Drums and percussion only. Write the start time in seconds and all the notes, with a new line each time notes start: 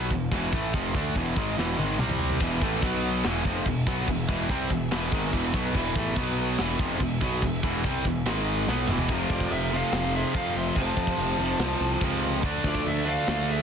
0.11 kick
0.31 kick, china
0.53 kick
0.74 kick, china
0.95 kick
1.15 kick, china
1.36 kick
1.59 snare
1.79 high tom
1.99 mid tom
2.09 mid tom
2.19 floor tom
2.30 floor tom
2.40 kick, crash, china
2.61 kick
2.82 kick, china
3.24 snare, china
3.45 kick
3.66 kick, china
3.87 kick
4.08 kick, china
4.29 kick
4.49 kick, china
4.70 kick
4.91 snare, china
5.12 kick
5.33 kick, china
5.54 kick
5.74 kick, china
5.96 kick
6.16 kick, china
6.58 snare, china
6.79 kick
7.00 kick, china
7.21 kick
7.42 kick, china
7.63 kick
7.84 kick, china
8.05 kick
8.25 snare, china
8.69 snare
8.87 mid tom
8.98 floor tom
9.08 kick, crash, china
9.30 kick
9.40 kick
9.50 china
9.92 snare, china
10.35 kick, china
10.76 kick, china
10.97 kick
11.07 kick
11.17 china
11.59 snare, china
12.01 kick, china
12.43 kick, china
12.64 kick
12.75 kick
12.85 china
13.27 snare, china